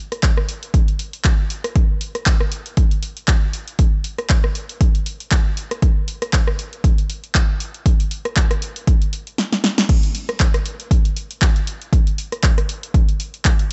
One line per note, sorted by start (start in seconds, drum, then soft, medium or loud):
0.12 cross-stick medium
0.12 closed hi-hat soft
0.23 kick loud
0.23 clap loud
0.23 closed hi-hat medium
0.37 cross-stick medium
0.49 open hi-hat loud
0.63 closed hi-hat soft
0.74 kick loud
0.74 closed hi-hat medium
0.88 closed hi-hat soft
0.99 open hi-hat loud
1.13 closed hi-hat soft
1.24 kick loud
1.24 clap loud
1.24 closed hi-hat medium
1.50 open hi-hat loud
1.64 cross-stick medium
1.64 closed hi-hat medium
1.76 kick loud
1.76 closed hi-hat medium
2.01 open hi-hat loud
2.15 cross-stick medium
2.15 closed hi-hat soft
2.26 kick loud
2.26 clap loud
2.26 closed hi-hat medium
2.40 cross-stick medium
2.52 open hi-hat loud
2.66 closed hi-hat soft
2.77 kick loud
2.77 closed hi-hat medium
2.91 closed hi-hat soft
3.03 open hi-hat loud
3.17 closed hi-hat soft
3.28 kick loud
3.28 clap loud
3.28 closed hi-hat medium
3.53 open hi-hat loud
3.68 closed hi-hat soft
3.79 kick loud
3.79 closed hi-hat medium
4.04 open hi-hat loud
4.18 cross-stick medium
4.18 closed hi-hat soft
4.30 kick loud
4.30 clap loud
4.30 closed hi-hat medium
4.44 cross-stick medium
4.55 open hi-hat loud
4.69 closed hi-hat medium
4.81 kick loud
4.81 closed hi-hat medium
4.95 closed hi-hat soft
5.06 open hi-hat loud
5.20 closed hi-hat medium
5.31 kick loud
5.31 clap loud
5.31 closed hi-hat medium
5.57 open hi-hat loud
5.71 cross-stick medium
5.71 closed hi-hat medium
5.82 kick loud
5.82 closed hi-hat medium
6.08 open hi-hat medium
6.22 cross-stick medium
6.22 closed hi-hat medium
6.33 kick loud
6.33 clap loud
6.33 closed hi-hat medium
6.47 cross-stick medium
6.59 open hi-hat loud
6.73 closed hi-hat medium
6.84 kick loud
6.84 closed hi-hat medium
6.98 closed hi-hat soft
7.10 open hi-hat medium
7.24 closed hi-hat medium
7.35 kick loud
7.35 clap loud
7.35 closed hi-hat medium
7.60 open hi-hat loud
7.74 closed hi-hat medium
7.86 kick loud
7.86 closed hi-hat medium
8.00 closed hi-hat soft
8.11 open hi-hat loud
8.25 cross-stick medium
8.25 closed hi-hat medium
8.37 kick loud
8.37 clap loud
8.37 closed hi-hat medium
8.51 cross-stick medium
8.51 closed hi-hat soft
8.62 open hi-hat loud
8.76 closed hi-hat medium
8.87 kick loud
8.87 closed hi-hat medium
9.02 closed hi-hat soft
9.13 open hi-hat loud
9.27 closed hi-hat medium
9.38 snare medium
9.53 snare medium
9.64 snare medium
9.78 snare medium
9.89 kick loud
9.89 closed hi-hat medium
9.89 crash loud
10.03 closed hi-hat soft
10.15 open hi-hat loud
10.29 cross-stick medium
10.29 closed hi-hat medium
10.40 kick loud
10.40 clap loud
10.40 closed hi-hat medium
10.54 cross-stick medium
10.54 closed hi-hat soft
10.66 open hi-hat loud
10.80 closed hi-hat medium
10.91 kick loud
10.91 closed hi-hat medium
11.05 closed hi-hat soft
11.16 open hi-hat loud
11.31 closed hi-hat medium
11.42 kick loud
11.42 clap loud
11.42 closed hi-hat medium
11.56 closed hi-hat soft
11.67 open hi-hat loud
11.82 closed hi-hat medium
11.93 kick loud
11.93 closed hi-hat medium
12.07 closed hi-hat soft
12.18 open hi-hat loud
12.32 cross-stick medium
12.32 closed hi-hat medium
12.43 kick loud
12.43 clap loud
12.43 closed hi-hat medium
12.58 cross-stick medium
12.58 closed hi-hat soft
12.69 open hi-hat loud
12.83 closed hi-hat medium
12.94 kick loud
12.94 closed hi-hat medium
13.09 closed hi-hat soft
13.20 open hi-hat loud
13.34 closed hi-hat medium
13.45 kick loud
13.45 clap loud
13.45 closed hi-hat medium
13.59 closed hi-hat soft